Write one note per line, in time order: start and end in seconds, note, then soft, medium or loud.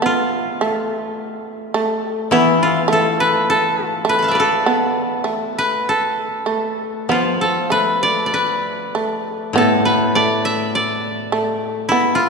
0.00 1.03 E3 soft
0.00 0.59 B3 medium
0.00 1.08 A4 medium
0.00 0.35 B4 medium
0.06 2.24 F4 medium
0.61 1.73 A3 medium
1.74 2.32 A3 medium
2.31 5.69 E3 medium
2.31 2.88 B3 medium
2.31 2.69 E4 medium
2.63 3.87 F4 medium
2.88 4.04 A3 medium
2.93 3.49 A4 medium
3.20 4.09 B4 medium
3.50 3.87 A4 medium
3.87 4.39 F4 medium
4.05 4.66 A3 medium
4.09 4.35 B4 medium
4.19 5.48 A5 soft
4.19 5.36 B5 soft
4.24 5.68 F5 soft
4.28 5.91 D5 soft
4.28 5.78 E5 soft
4.35 5.58 B4 soft
4.40 5.88 A4 medium
4.66 5.24 B3 medium
5.24 6.45 A3 medium
5.58 7.36 B4 medium
5.89 7.41 A4 medium
6.46 7.09 A3 soft
7.09 10.47 F3 soft
7.09 7.70 B3 medium
7.09 9.30 F4 medium
7.41 9.32 A4 medium
7.70 8.94 A3 medium
7.70 8.33 B4 medium
8.03 8.26 D5 medium
8.26 9.86 D5 soft
8.34 9.85 B4 medium
8.95 9.55 A3 medium
9.53 12.29 A2 medium
9.53 10.16 B3 medium
9.58 11.48 A4 medium
9.85 11.63 B4 medium
10.15 11.31 A3 medium
10.15 10.75 D5 medium
10.45 11.94 E5 medium
10.75 12.29 D5 medium
11.32 11.90 A3 medium
11.89 12.29 B3 medium
11.89 12.21 E4 medium
12.15 12.29 F4 medium